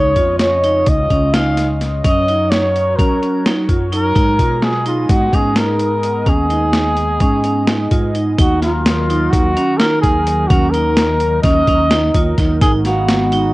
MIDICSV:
0, 0, Header, 1, 6, 480
1, 0, Start_track
1, 0, Tempo, 469851
1, 2088, Time_signature, 9, 3, 24, 8
1, 13828, End_track
2, 0, Start_track
2, 0, Title_t, "Trumpet"
2, 0, Program_c, 0, 56
2, 0, Note_on_c, 0, 73, 94
2, 391, Note_off_c, 0, 73, 0
2, 397, Note_on_c, 0, 73, 79
2, 904, Note_on_c, 0, 75, 96
2, 920, Note_off_c, 0, 73, 0
2, 1364, Note_on_c, 0, 77, 81
2, 1379, Note_off_c, 0, 75, 0
2, 1809, Note_off_c, 0, 77, 0
2, 2100, Note_on_c, 0, 75, 96
2, 2558, Note_on_c, 0, 73, 80
2, 2574, Note_off_c, 0, 75, 0
2, 3028, Note_on_c, 0, 70, 77
2, 3043, Note_off_c, 0, 73, 0
2, 3577, Note_off_c, 0, 70, 0
2, 4040, Note_on_c, 0, 70, 110
2, 4743, Note_on_c, 0, 68, 87
2, 4759, Note_off_c, 0, 70, 0
2, 4972, Note_off_c, 0, 68, 0
2, 4978, Note_on_c, 0, 65, 78
2, 5205, Note_on_c, 0, 66, 90
2, 5221, Note_off_c, 0, 65, 0
2, 5464, Note_on_c, 0, 68, 85
2, 5480, Note_off_c, 0, 66, 0
2, 5697, Note_on_c, 0, 70, 91
2, 5713, Note_off_c, 0, 68, 0
2, 6424, Note_on_c, 0, 68, 95
2, 6439, Note_off_c, 0, 70, 0
2, 8335, Note_off_c, 0, 68, 0
2, 8571, Note_on_c, 0, 66, 82
2, 8792, Note_off_c, 0, 66, 0
2, 8814, Note_on_c, 0, 65, 75
2, 9509, Note_on_c, 0, 66, 92
2, 9525, Note_off_c, 0, 65, 0
2, 9989, Note_on_c, 0, 70, 93
2, 10004, Note_off_c, 0, 66, 0
2, 10224, Note_off_c, 0, 70, 0
2, 10230, Note_on_c, 0, 68, 82
2, 10702, Note_on_c, 0, 66, 90
2, 10718, Note_off_c, 0, 68, 0
2, 10937, Note_on_c, 0, 70, 90
2, 10953, Note_off_c, 0, 66, 0
2, 11665, Note_off_c, 0, 70, 0
2, 11672, Note_on_c, 0, 75, 104
2, 12597, Note_off_c, 0, 75, 0
2, 12889, Note_on_c, 0, 68, 86
2, 12996, Note_off_c, 0, 68, 0
2, 13141, Note_on_c, 0, 66, 77
2, 13828, Note_off_c, 0, 66, 0
2, 13828, End_track
3, 0, Start_track
3, 0, Title_t, "Analog synth pad"
3, 0, Program_c, 1, 89
3, 0, Note_on_c, 1, 49, 58
3, 0, Note_on_c, 1, 61, 55
3, 0, Note_on_c, 1, 65, 53
3, 0, Note_on_c, 1, 75, 74
3, 2047, Note_off_c, 1, 49, 0
3, 2049, Note_off_c, 1, 61, 0
3, 2051, Note_off_c, 1, 75, 0
3, 2052, Note_off_c, 1, 65, 0
3, 2098, Note_on_c, 1, 54, 61
3, 2102, Note_on_c, 1, 70, 59
3, 2103, Note_on_c, 1, 66, 55
3, 2111, Note_on_c, 1, 73, 73
3, 4211, Note_off_c, 1, 54, 0
3, 4213, Note_off_c, 1, 70, 0
3, 4214, Note_off_c, 1, 66, 0
3, 4218, Note_off_c, 1, 73, 0
3, 4251, Note_on_c, 1, 56, 63
3, 4254, Note_on_c, 1, 59, 60
3, 4257, Note_on_c, 1, 68, 60
3, 4257, Note_on_c, 1, 75, 70
3, 8528, Note_off_c, 1, 56, 0
3, 8529, Note_off_c, 1, 59, 0
3, 8530, Note_off_c, 1, 68, 0
3, 8530, Note_off_c, 1, 75, 0
3, 8570, Note_on_c, 1, 51, 64
3, 8572, Note_on_c, 1, 63, 62
3, 8578, Note_on_c, 1, 54, 57
3, 8579, Note_on_c, 1, 70, 76
3, 12845, Note_off_c, 1, 51, 0
3, 12846, Note_off_c, 1, 63, 0
3, 12849, Note_off_c, 1, 54, 0
3, 12850, Note_off_c, 1, 70, 0
3, 12885, Note_on_c, 1, 56, 65
3, 12885, Note_on_c, 1, 63, 61
3, 12885, Note_on_c, 1, 66, 59
3, 12896, Note_on_c, 1, 59, 75
3, 13828, Note_off_c, 1, 56, 0
3, 13828, Note_off_c, 1, 59, 0
3, 13828, Note_off_c, 1, 63, 0
3, 13828, Note_off_c, 1, 66, 0
3, 13828, End_track
4, 0, Start_track
4, 0, Title_t, "Vibraphone"
4, 0, Program_c, 2, 11
4, 171, Note_on_c, 2, 65, 62
4, 487, Note_off_c, 2, 65, 0
4, 654, Note_on_c, 2, 63, 64
4, 970, Note_off_c, 2, 63, 0
4, 1131, Note_on_c, 2, 61, 64
4, 1289, Note_off_c, 2, 61, 0
4, 1375, Note_on_c, 2, 63, 73
4, 1690, Note_off_c, 2, 63, 0
4, 2091, Note_on_c, 2, 61, 78
4, 2249, Note_off_c, 2, 61, 0
4, 2340, Note_on_c, 2, 63, 64
4, 2653, Note_off_c, 2, 63, 0
4, 3057, Note_on_c, 2, 61, 74
4, 3213, Note_off_c, 2, 61, 0
4, 3295, Note_on_c, 2, 61, 70
4, 3451, Note_off_c, 2, 61, 0
4, 3534, Note_on_c, 2, 63, 74
4, 3690, Note_off_c, 2, 63, 0
4, 3766, Note_on_c, 2, 65, 67
4, 3925, Note_off_c, 2, 65, 0
4, 4008, Note_on_c, 2, 63, 69
4, 4167, Note_off_c, 2, 63, 0
4, 4242, Note_on_c, 2, 63, 79
4, 4402, Note_off_c, 2, 63, 0
4, 4489, Note_on_c, 2, 65, 70
4, 4806, Note_off_c, 2, 65, 0
4, 4964, Note_on_c, 2, 63, 71
4, 5282, Note_off_c, 2, 63, 0
4, 5453, Note_on_c, 2, 61, 65
4, 5610, Note_off_c, 2, 61, 0
4, 5679, Note_on_c, 2, 63, 67
4, 5999, Note_off_c, 2, 63, 0
4, 6403, Note_on_c, 2, 61, 75
4, 6563, Note_off_c, 2, 61, 0
4, 6645, Note_on_c, 2, 63, 70
4, 6963, Note_off_c, 2, 63, 0
4, 7373, Note_on_c, 2, 61, 74
4, 7529, Note_off_c, 2, 61, 0
4, 7612, Note_on_c, 2, 61, 63
4, 7769, Note_off_c, 2, 61, 0
4, 7848, Note_on_c, 2, 63, 67
4, 8006, Note_off_c, 2, 63, 0
4, 8085, Note_on_c, 2, 65, 63
4, 8245, Note_off_c, 2, 65, 0
4, 8328, Note_on_c, 2, 63, 60
4, 8486, Note_off_c, 2, 63, 0
4, 8565, Note_on_c, 2, 63, 78
4, 8724, Note_off_c, 2, 63, 0
4, 8804, Note_on_c, 2, 65, 67
4, 9122, Note_off_c, 2, 65, 0
4, 9293, Note_on_c, 2, 63, 70
4, 9608, Note_off_c, 2, 63, 0
4, 9774, Note_on_c, 2, 61, 74
4, 9930, Note_off_c, 2, 61, 0
4, 10021, Note_on_c, 2, 63, 76
4, 10333, Note_off_c, 2, 63, 0
4, 10733, Note_on_c, 2, 61, 76
4, 10889, Note_off_c, 2, 61, 0
4, 10974, Note_on_c, 2, 63, 66
4, 11288, Note_off_c, 2, 63, 0
4, 11696, Note_on_c, 2, 61, 85
4, 11851, Note_off_c, 2, 61, 0
4, 11938, Note_on_c, 2, 61, 72
4, 12092, Note_off_c, 2, 61, 0
4, 12174, Note_on_c, 2, 63, 82
4, 12330, Note_off_c, 2, 63, 0
4, 12415, Note_on_c, 2, 65, 68
4, 12571, Note_off_c, 2, 65, 0
4, 12653, Note_on_c, 2, 63, 74
4, 12809, Note_off_c, 2, 63, 0
4, 12893, Note_on_c, 2, 63, 85
4, 13049, Note_off_c, 2, 63, 0
4, 13139, Note_on_c, 2, 77, 69
4, 13452, Note_off_c, 2, 77, 0
4, 13614, Note_on_c, 2, 63, 74
4, 13828, Note_off_c, 2, 63, 0
4, 13828, End_track
5, 0, Start_track
5, 0, Title_t, "Fretless electric bass"
5, 0, Program_c, 3, 35
5, 0, Note_on_c, 3, 37, 86
5, 147, Note_off_c, 3, 37, 0
5, 163, Note_on_c, 3, 41, 72
5, 844, Note_off_c, 3, 41, 0
5, 885, Note_on_c, 3, 37, 82
5, 1108, Note_off_c, 3, 37, 0
5, 1125, Note_on_c, 3, 37, 79
5, 2045, Note_off_c, 3, 37, 0
5, 2088, Note_on_c, 3, 42, 83
5, 3007, Note_off_c, 3, 42, 0
5, 3047, Note_on_c, 3, 54, 83
5, 3726, Note_off_c, 3, 54, 0
5, 3765, Note_on_c, 3, 42, 72
5, 4208, Note_off_c, 3, 42, 0
5, 4245, Note_on_c, 3, 44, 86
5, 4467, Note_off_c, 3, 44, 0
5, 4480, Note_on_c, 3, 47, 85
5, 5163, Note_off_c, 3, 47, 0
5, 5200, Note_on_c, 3, 44, 84
5, 5424, Note_off_c, 3, 44, 0
5, 5443, Note_on_c, 3, 44, 80
5, 6364, Note_off_c, 3, 44, 0
5, 6398, Note_on_c, 3, 39, 80
5, 7322, Note_off_c, 3, 39, 0
5, 7359, Note_on_c, 3, 44, 85
5, 8042, Note_off_c, 3, 44, 0
5, 8079, Note_on_c, 3, 44, 69
5, 8524, Note_off_c, 3, 44, 0
5, 8566, Note_on_c, 3, 39, 97
5, 9485, Note_off_c, 3, 39, 0
5, 9525, Note_on_c, 3, 39, 87
5, 9746, Note_off_c, 3, 39, 0
5, 10249, Note_on_c, 3, 39, 78
5, 10689, Note_off_c, 3, 39, 0
5, 10726, Note_on_c, 3, 39, 92
5, 11645, Note_off_c, 3, 39, 0
5, 11682, Note_on_c, 3, 39, 98
5, 11904, Note_off_c, 3, 39, 0
5, 11925, Note_on_c, 3, 39, 80
5, 12366, Note_off_c, 3, 39, 0
5, 12403, Note_on_c, 3, 39, 80
5, 12625, Note_off_c, 3, 39, 0
5, 12644, Note_on_c, 3, 39, 84
5, 12883, Note_on_c, 3, 32, 109
5, 12898, Note_off_c, 3, 39, 0
5, 13802, Note_off_c, 3, 32, 0
5, 13828, End_track
6, 0, Start_track
6, 0, Title_t, "Drums"
6, 162, Note_on_c, 9, 42, 49
6, 164, Note_on_c, 9, 36, 58
6, 265, Note_off_c, 9, 42, 0
6, 266, Note_off_c, 9, 36, 0
6, 402, Note_on_c, 9, 38, 83
6, 402, Note_on_c, 9, 42, 67
6, 505, Note_off_c, 9, 38, 0
6, 505, Note_off_c, 9, 42, 0
6, 650, Note_on_c, 9, 42, 58
6, 752, Note_off_c, 9, 42, 0
6, 882, Note_on_c, 9, 42, 74
6, 886, Note_on_c, 9, 36, 92
6, 985, Note_off_c, 9, 42, 0
6, 988, Note_off_c, 9, 36, 0
6, 1127, Note_on_c, 9, 36, 59
6, 1128, Note_on_c, 9, 42, 51
6, 1229, Note_off_c, 9, 36, 0
6, 1230, Note_off_c, 9, 42, 0
6, 1367, Note_on_c, 9, 38, 87
6, 1367, Note_on_c, 9, 42, 76
6, 1469, Note_off_c, 9, 38, 0
6, 1469, Note_off_c, 9, 42, 0
6, 1608, Note_on_c, 9, 38, 31
6, 1608, Note_on_c, 9, 42, 59
6, 1710, Note_off_c, 9, 38, 0
6, 1710, Note_off_c, 9, 42, 0
6, 1851, Note_on_c, 9, 38, 30
6, 1851, Note_on_c, 9, 42, 56
6, 1953, Note_off_c, 9, 38, 0
6, 1953, Note_off_c, 9, 42, 0
6, 2089, Note_on_c, 9, 36, 100
6, 2090, Note_on_c, 9, 42, 70
6, 2192, Note_off_c, 9, 36, 0
6, 2193, Note_off_c, 9, 42, 0
6, 2333, Note_on_c, 9, 42, 47
6, 2436, Note_off_c, 9, 42, 0
6, 2572, Note_on_c, 9, 38, 96
6, 2572, Note_on_c, 9, 42, 64
6, 2675, Note_off_c, 9, 38, 0
6, 2675, Note_off_c, 9, 42, 0
6, 2818, Note_on_c, 9, 42, 52
6, 2920, Note_off_c, 9, 42, 0
6, 3051, Note_on_c, 9, 36, 99
6, 3057, Note_on_c, 9, 42, 68
6, 3154, Note_off_c, 9, 36, 0
6, 3159, Note_off_c, 9, 42, 0
6, 3296, Note_on_c, 9, 42, 48
6, 3398, Note_off_c, 9, 42, 0
6, 3533, Note_on_c, 9, 38, 96
6, 3533, Note_on_c, 9, 42, 65
6, 3635, Note_off_c, 9, 38, 0
6, 3635, Note_off_c, 9, 42, 0
6, 3767, Note_on_c, 9, 36, 68
6, 3768, Note_on_c, 9, 42, 54
6, 3869, Note_off_c, 9, 36, 0
6, 3870, Note_off_c, 9, 42, 0
6, 4011, Note_on_c, 9, 42, 54
6, 4113, Note_off_c, 9, 42, 0
6, 4247, Note_on_c, 9, 36, 102
6, 4248, Note_on_c, 9, 42, 73
6, 4349, Note_off_c, 9, 36, 0
6, 4350, Note_off_c, 9, 42, 0
6, 4485, Note_on_c, 9, 36, 57
6, 4487, Note_on_c, 9, 42, 52
6, 4587, Note_off_c, 9, 36, 0
6, 4589, Note_off_c, 9, 42, 0
6, 4723, Note_on_c, 9, 38, 93
6, 4723, Note_on_c, 9, 42, 74
6, 4825, Note_off_c, 9, 38, 0
6, 4825, Note_off_c, 9, 42, 0
6, 4962, Note_on_c, 9, 42, 50
6, 5064, Note_off_c, 9, 42, 0
6, 5204, Note_on_c, 9, 36, 94
6, 5204, Note_on_c, 9, 42, 75
6, 5306, Note_off_c, 9, 36, 0
6, 5306, Note_off_c, 9, 42, 0
6, 5444, Note_on_c, 9, 36, 64
6, 5449, Note_on_c, 9, 42, 52
6, 5546, Note_off_c, 9, 36, 0
6, 5551, Note_off_c, 9, 42, 0
6, 5679, Note_on_c, 9, 38, 95
6, 5679, Note_on_c, 9, 42, 71
6, 5781, Note_off_c, 9, 38, 0
6, 5781, Note_off_c, 9, 42, 0
6, 5920, Note_on_c, 9, 42, 57
6, 6022, Note_off_c, 9, 42, 0
6, 6163, Note_on_c, 9, 42, 56
6, 6265, Note_off_c, 9, 42, 0
6, 6399, Note_on_c, 9, 36, 92
6, 6399, Note_on_c, 9, 42, 75
6, 6501, Note_off_c, 9, 42, 0
6, 6502, Note_off_c, 9, 36, 0
6, 6644, Note_on_c, 9, 42, 46
6, 6746, Note_off_c, 9, 42, 0
6, 6879, Note_on_c, 9, 38, 97
6, 6879, Note_on_c, 9, 42, 59
6, 6981, Note_off_c, 9, 38, 0
6, 6981, Note_off_c, 9, 42, 0
6, 7118, Note_on_c, 9, 42, 49
6, 7221, Note_off_c, 9, 42, 0
6, 7358, Note_on_c, 9, 42, 63
6, 7360, Note_on_c, 9, 36, 94
6, 7461, Note_off_c, 9, 42, 0
6, 7462, Note_off_c, 9, 36, 0
6, 7599, Note_on_c, 9, 42, 46
6, 7701, Note_off_c, 9, 42, 0
6, 7840, Note_on_c, 9, 38, 91
6, 7840, Note_on_c, 9, 42, 65
6, 7942, Note_off_c, 9, 38, 0
6, 7942, Note_off_c, 9, 42, 0
6, 8082, Note_on_c, 9, 42, 56
6, 8083, Note_on_c, 9, 36, 74
6, 8184, Note_off_c, 9, 42, 0
6, 8185, Note_off_c, 9, 36, 0
6, 8324, Note_on_c, 9, 42, 54
6, 8427, Note_off_c, 9, 42, 0
6, 8566, Note_on_c, 9, 36, 101
6, 8566, Note_on_c, 9, 42, 87
6, 8668, Note_off_c, 9, 36, 0
6, 8668, Note_off_c, 9, 42, 0
6, 8810, Note_on_c, 9, 38, 27
6, 8810, Note_on_c, 9, 42, 58
6, 8912, Note_off_c, 9, 38, 0
6, 8912, Note_off_c, 9, 42, 0
6, 9051, Note_on_c, 9, 38, 99
6, 9051, Note_on_c, 9, 42, 74
6, 9153, Note_off_c, 9, 38, 0
6, 9153, Note_off_c, 9, 42, 0
6, 9299, Note_on_c, 9, 42, 58
6, 9401, Note_off_c, 9, 42, 0
6, 9531, Note_on_c, 9, 36, 105
6, 9535, Note_on_c, 9, 42, 87
6, 9633, Note_off_c, 9, 36, 0
6, 9637, Note_off_c, 9, 42, 0
6, 9774, Note_on_c, 9, 42, 57
6, 9877, Note_off_c, 9, 42, 0
6, 10008, Note_on_c, 9, 38, 96
6, 10008, Note_on_c, 9, 42, 71
6, 10110, Note_off_c, 9, 38, 0
6, 10110, Note_off_c, 9, 42, 0
6, 10251, Note_on_c, 9, 36, 72
6, 10252, Note_on_c, 9, 42, 56
6, 10353, Note_off_c, 9, 36, 0
6, 10354, Note_off_c, 9, 42, 0
6, 10490, Note_on_c, 9, 42, 61
6, 10592, Note_off_c, 9, 42, 0
6, 10729, Note_on_c, 9, 36, 117
6, 10730, Note_on_c, 9, 42, 81
6, 10831, Note_off_c, 9, 36, 0
6, 10832, Note_off_c, 9, 42, 0
6, 10970, Note_on_c, 9, 42, 51
6, 11073, Note_off_c, 9, 42, 0
6, 11206, Note_on_c, 9, 38, 94
6, 11206, Note_on_c, 9, 42, 71
6, 11308, Note_off_c, 9, 38, 0
6, 11308, Note_off_c, 9, 42, 0
6, 11444, Note_on_c, 9, 42, 55
6, 11546, Note_off_c, 9, 42, 0
6, 11682, Note_on_c, 9, 38, 34
6, 11682, Note_on_c, 9, 42, 73
6, 11686, Note_on_c, 9, 36, 106
6, 11784, Note_off_c, 9, 38, 0
6, 11784, Note_off_c, 9, 42, 0
6, 11788, Note_off_c, 9, 36, 0
6, 11927, Note_on_c, 9, 36, 62
6, 11927, Note_on_c, 9, 42, 55
6, 12029, Note_off_c, 9, 36, 0
6, 12029, Note_off_c, 9, 42, 0
6, 12165, Note_on_c, 9, 38, 98
6, 12165, Note_on_c, 9, 42, 78
6, 12267, Note_off_c, 9, 38, 0
6, 12267, Note_off_c, 9, 42, 0
6, 12406, Note_on_c, 9, 42, 62
6, 12407, Note_on_c, 9, 36, 75
6, 12508, Note_off_c, 9, 42, 0
6, 12509, Note_off_c, 9, 36, 0
6, 12644, Note_on_c, 9, 38, 34
6, 12644, Note_on_c, 9, 42, 58
6, 12646, Note_on_c, 9, 36, 66
6, 12747, Note_off_c, 9, 38, 0
6, 12747, Note_off_c, 9, 42, 0
6, 12748, Note_off_c, 9, 36, 0
6, 12886, Note_on_c, 9, 36, 113
6, 12886, Note_on_c, 9, 42, 85
6, 12988, Note_off_c, 9, 36, 0
6, 12988, Note_off_c, 9, 42, 0
6, 13125, Note_on_c, 9, 38, 29
6, 13125, Note_on_c, 9, 42, 55
6, 13227, Note_off_c, 9, 38, 0
6, 13227, Note_off_c, 9, 42, 0
6, 13367, Note_on_c, 9, 38, 97
6, 13367, Note_on_c, 9, 42, 75
6, 13470, Note_off_c, 9, 38, 0
6, 13470, Note_off_c, 9, 42, 0
6, 13608, Note_on_c, 9, 42, 57
6, 13710, Note_off_c, 9, 42, 0
6, 13828, End_track
0, 0, End_of_file